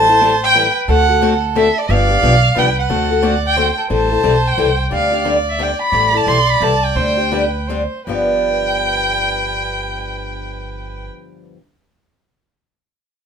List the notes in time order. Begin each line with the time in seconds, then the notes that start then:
Already playing: A1 C5 A5
0.08 C4 E4 A4
0.21 E3 G3 C4 E4 A4
0.43 G5
0.54 E3 G3 C4 E4 A4 B4
0.88 D2 D3 A3 C4 F#4 A4 F#5
1.08 C4 F#4 A4
1.21 D3 A3 C4 F#4 A4
1.55 D3 A3 C4 F#4 A4 E5
1.78 D5
1.89 G1 D3 F3 B3 D4 G4 D5 F5
2.10 B3 D4 G4
2.22 B1 D3 F3 B3 D4 G4
2.56 C2 D3 F3 B3 D4 G4 B4 G5
2.79 F#5
2.89 D2 D3 A3 C4 F#4 A4
3.10 C4 F#4 A4
3.22 D3 A3 C4 F#4 A4 D5
3.46 G5
3.56 D3 A3 C4 F#4 A4 C5
3.77 A4
3.89 A1 E3 G3 C4 E4 A4 C5 A5
4.10 C4 E4 A4
4.23 B1 E3 G3 C4 E4 A4
4.47 G5
4.58 C2 E3 G3 C4 E4 A4
4.91 D2 D3 G3 C4 D4 G4 D5 F5
5.11 C4 D4 G4
5.25 D3 G3 C4 D4 G4
5.49 E5
5.59 D3 G3 C4 D4 G4 G5
5.82 B5
5.91 A1 E3 G3 C4 E4 A4 D5
6.13 C4 E4 A4
6.17 A5
6.26 B1 E3 G3 C4 E4 A4 C6
6.50 B5
6.61 C2 E3 G3 C4 E4 A4 A5
6.85 G5
6.95 D2 D3 G3 C4 D4 G4 C5
7.17 C4 D4 G4
7.31 D3 G3 C4 D4 G4 B4
7.67 D3 G3 C4 D4 G4 C5
8.06 G1 G2 D3 F3 B3 D4 G4 B4 G5